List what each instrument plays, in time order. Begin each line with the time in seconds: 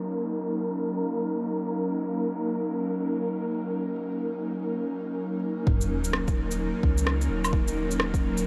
Already playing: analog synth pad F#3 A#3 C#4 D#4 A#4, synth texture A#4, downlifter
5.67 sub bass D#1, analog synth pad F#3 A#3 C#4 D#4 A#4, kick, sub drop
5.81 shaker
6.04 shaker
6.13 cross-stick
6.28 kick, shaker
6.51 shaker
6.83 sub bass C#2, kick
6.98 shaker
7.07 cross-stick
7.21 shaker
7.29 sub bass D#1
7.44 low woodblock, shaker
7.53 kick
7.68 shaker
7.91 shaker
8.00 cross-stick
8.14 kick, shaker
8.37 shaker